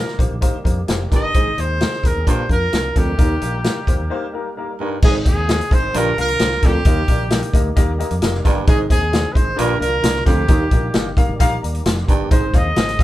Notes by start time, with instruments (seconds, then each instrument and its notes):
Already playing: upright piano D#3, tonewheel organ D#3 G3 A#3 G4, trumpet A#4
0.08 snare
0.18 fingered electric bass A#1, upright piano A#3 D#4 G4 C5, kick, closed hi-hat
0.31 fingered electric bass A#1
0.41 upright piano A#3 D#4 G4 C5, kick, closed hi-hat
0.54 muted fingered electric bass stroke
0.64 fingered electric bass F2, upright piano A#3 D#4 G4 C5, kick, closed hi-hat
0.87 fingered electric bass F1, upright piano A#3 D#4 G4 C5, snare, closed hi-hat
1.11 fingered electric bass G1, baritone saxophone G2, upright piano A#3 D#4 G4 A#4, kick, snare, closed hi-hat
1.15 trumpet D#5
1.34 fingered electric bass G#1, baritone saxophone G#2, upright piano G#2 C4 D#4 G#4 C5, tonewheel organ D#3 G#3 C4 G#4, kick, closed hi-hat
1.57 fingered electric bass D#2, upright piano C4 D#4 G#4 D#5, trumpet C5, closed hi-hat
1.80 upright piano C4 D#4 G#4 D#5, snare, closed hi-hat
1.93 snare
2.03 fingered electric bass D#2, upright piano C4 D#4 G#4 A#4, trumpet A#4, kick, closed hi-hat
2.15 fingered electric bass D#2
2.25 baritone saxophone G2, upright piano A#2 A#3 D4 F4 A#4, fingered electric bass A#2, tonewheel organ F3 A#3 D4 A#4, trumpet C5, kick, closed hi-hat
2.49 fingered electric bass F2, upright piano A#3 D4 F4 A#4, trumpet A#4, kick, closed hi-hat
2.72 fingered electric bass C2, upright piano A#3 D4 F4 A#4, snare, closed hi-hat
2.95 fingered electric bass D2, baritone saxophone F2, upright piano A#3 D4 F4 A#4, trumpet G4, kick, closed hi-hat
3.17 fingered electric bass D#2, baritone saxophone D#2, upright piano D#3 A#3 D#4 G4 A#4, tonewheel organ G3 D#4, kick, closed hi-hat
3.41 fingered electric bass A#1, upright piano A#3 D#4 G4 A#4, closed hi-hat
3.64 upright piano A#3 D#4 G4 A#4, snare, closed hi-hat
3.87 fingered electric bass D#2, upright piano A#3 D#4 G4 C5, kick, closed hi-hat
4.00 fingered electric bass D#2
4.10 upright piano A#3 D#4 G4 C5
4.33 upright piano A#3 D#4 G4 A#4
4.57 upright piano A#3 D#4 G4 A#4
4.80 baritone saxophone G2, upright piano A#3 D#4 G4 A#4
5.02 fingered electric bass G#1, upright piano G#2 C4 D#4 G#4 C5 D#5, baritone saxophone G#2, tonewheel organ D#3 G#3 C4 G#4, trumpet G#4, kick, crash
5.26 fingered electric bass D#2, upright piano C4 D#4 G#4 C5 D#5, trumpet G#4, kick, closed hi-hat
5.48 upright piano C4 D#4 G#4 C5 D#5, snare, closed hi-hat
5.61 closed hi-hat
5.71 fingered electric bass G#1, upright piano C4 D#4 G#4 C5 D#5, trumpet C5, kick, closed hi-hat
5.93 fingered electric bass A#1, baritone saxophone G2, upright piano A#2 A#3 D4 F4 A#4 D5, tonewheel organ D3 F3 A#3 F4, closed hi-hat
5.97 trumpet A#4
6.17 fingered electric bass C2, upright piano A#3 D4 F4 A#4 F5, closed hi-hat
6.21 trumpet A#4
6.28 closed hi-hat
6.39 fingered electric bass C2, upright piano A#3 D4 F4 A#4 C5, snare, closed hi-hat
6.51 snare
6.62 fingered electric bass D2, baritone saxophone F2, upright piano A#3 D4 F4 A#4 D5, trumpet G4, kick, snare, closed hi-hat
6.85 fingered electric bass D#2, baritone saxophone D#2, tonewheel organ D#3 G3 G4, upright piano D#3 A#3 D#4 G4 A#4 D#5, kick, closed hi-hat
7.08 fingered electric bass A#1, upright piano A#3 D#4 G4 A#4 D5, kick, closed hi-hat
7.30 upright piano A#3 D#4 G4 A#4 D#5, snare, closed hi-hat
7.43 closed hi-hat
7.53 fingered electric bass D2, upright piano A#3 D#4 G4 A#4 D#5, kick, closed hi-hat
7.76 fingered electric bass D#2, upright piano A#3 D#4 G4 A#4 D#5, kick, closed hi-hat
7.99 upright piano A#3 D#4 G4 A#4 D#5, closed hi-hat
8.11 fingered electric bass F2, closed hi-hat
8.22 fingered electric bass F1, upright piano A#3 D#4 G4 A#4 D#5, snare, closed hi-hat
8.34 snare
8.44 fingered electric bass G1, baritone saxophone G2, upright piano A#3 D#4 G4 A#4 D5, kick, snare, closed hi-hat
8.67 fingered electric bass G#1, upright piano G#2 C4 D#4 G#4 C5 D#5, baritone saxophone G#2, tonewheel organ G#3 C4 G#4, trumpet G#4, kick, closed hi-hat
8.89 fingered electric bass D#2, upright piano C4 D#4 G#4 C5 D#5, trumpet G#4, kick, closed hi-hat
9.11 upright piano C4 D#4 G#4 C5 D5, snare, closed hi-hat
9.32 fingered electric bass G#1, upright piano C4 D#4 G#4 C5 D#5, trumpet B4 C5, kick
9.36 closed hi-hat
9.56 fingered electric bass A#1, baritone saxophone G2, upright piano A#2 A#3 D4 F4 A#4 D5, tonewheel organ D3 F3 A#3 F4, trumpet A#4, closed hi-hat
9.79 fingered electric bass C2, upright piano A#3 D4 F4 A#4 D5, trumpet A#4, closed hi-hat
10.02 fingered electric bass C2, upright piano A#3 D4 F4 A#4 D5, snare, closed hi-hat
10.15 snare
10.25 fingered electric bass D2, baritone saxophone F2, upright piano A#3 D4 F4 A#4 F5, trumpet G4, kick, snare, closed hi-hat
10.48 baritone saxophone D#2, fingered electric bass D#2, upright piano D#3 A#3 D#4 G4 A#4 D#5, tonewheel organ D#3 G3 A#3 G4, kick, closed hi-hat
10.71 fingered electric bass A#1, upright piano A#3 D#4 G4 A#4 D#5, kick, closed hi-hat
10.94 fingered electric bass G1, upright piano A#3 D#4 G4 A#4 D#5, snare, closed hi-hat
11.17 upright piano A#3 D#4 G4 A#4 F5, kick, closed hi-hat
11.29 fingered electric bass G#1
11.39 fingered electric bass A#1, upright piano A#3 D#4 G4 A#4 F5, kick, closed hi-hat
11.62 fingered electric bass D#2, upright piano D5 A#5, closed hi-hat
11.75 closed hi-hat
11.86 fingered electric bass F1, upright piano D#5 C6, snare, closed hi-hat
11.97 snare
12.08 fingered electric bass G1, baritone saxophone G2, upright piano D5 A#5, kick, closed hi-hat
12.31 fingered electric bass G#1, baritone saxophone G#2, upright piano G#2 C4 D#4 G#4 C5 D#5, tonewheel organ D#3 G#3 C4 G#4, trumpet C5, kick, closed hi-hat
12.53 fingered electric bass D#2, upright piano C4 D#4 G#4 C5 F5, trumpet D#5, kick, closed hi-hat
12.76 fingered electric bass G#1, upright piano C4 D#4 G#4 C5 D#5, snare, closed hi-hat
12.88 snare, closed hi-hat
12.99 upright piano C4 D#4 G#4 C5 F5, kick, closed hi-hat